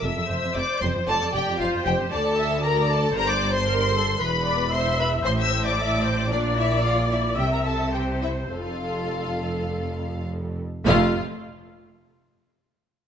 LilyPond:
<<
  \new Staff \with { instrumentName = "Violin section" } { \time 4/4 \key f \major \tempo 4 = 113 e'''4 d'''8 c'''8 a''8 g''8 f''8 g''8 | a''4 bes''8 a''8 bes''16 d'''8 c'''4~ c'''16 | b''4 c'''8 b''8 c'''16 e'''8 d'''4~ d'''16 | d''8 e''8 f''8 e''8 g''16 bes''16 a''8 g''8 e''8 |
f''2. r4 | f''8 r2. r8 | }
  \new Staff \with { instrumentName = "Viola section" } { \time 4/4 \key f \major a'8 c''4. d''4 c''4 | d''8 e''8 d''4 c''4 bes'8 a'8 | b'8 d''8 e''4 c''4 e''8 c''8 | d''2 e''4 c''4 |
a'2.~ a'8 r8 | <a f'>8 r2. r8 | }
  \new Staff \with { instrumentName = "Violin section" } { \time 4/4 \key f \major e''4 d''8 c''8 a'8 g'8 f'8 g'8 | a'4 bes'8 a'8 bes'16 d''8 c''4~ c''16 | b'4 c''8 b'8 c''16 e''8 d''4~ d''16 | d'8 e'8 f'8 e'8 g'16 bes'16 a'8 g'8 e'8 |
f'2. r4 | f'8 r2. r8 | }
  \new Staff \with { instrumentName = "Cello section" } { \clef bass \time 4/4 \key f \major f,16 f,16 f,16 f,16 f,16 r16 f,16 f,16 f,16 f,16 f,16 f,16 f,16 f,16 f,16 f,16 | d,2 g,2 | e,2 a,2 | bes,2 c2 |
f,2.~ f,8. r16 | f,8 r2. r8 | }
  \new Staff \with { instrumentName = "Double bass section" } { \clef bass \time 4/4 \key f \major f,,16 r16 f,,16 r16 f,,16 r16 f,,16 r16 f,,16 r16 f,,16 r16 f,,16 r16 f,,16 r16 | d,2 g,,2 | e,,2 a,,2 | bes,,2 c,2 |
f,,2.~ f,,8 r8 | f,,8 r2. r8 | }
>>